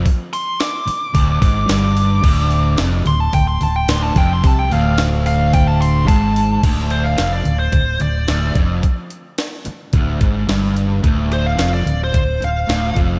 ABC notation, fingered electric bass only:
X:1
M:4/4
L:1/8
Q:1/4=109
K:Dm
V:1 name="Fingered electric bass" clef=bass
z4 D,,, ^G,,, =G,,,2 | D,,,2 F,,, D,,, D,,, D,,, D,,, F,,, | C,, D,,,4- D,,, ^G,,,2 | D,,,2 F,,, D,,, D,,, D,,, D,,, F,,, |
z4 D,,, ^G,,, =G,,,2 | D,,,2 F,,, D,,, D,,, D,,, D,,, F,,, |]